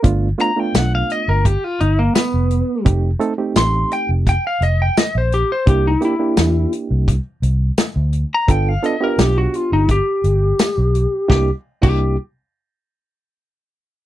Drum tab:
CC |----------------|----------------|----------------|----------------|
HH |x-x-x-x-x-x-x-x-|x-x-x-x-x-x-x-x-|x-x-x-x-x-x-x-x-|x-x-x-x-x-x-x-x-|
TB |----x-------x---|----x-------x---|----x-------x---|----x-------x---|
SD |----o-------o---|----o-------o---|----o-------o---|----o-------o---|
BD |o-------o-------|o-------o-------|o-------o-------|o-------o-------|

CC |---x------------|
HH |----------------|
TB |----------------|
SD |o---------------|
BD |o--o------------|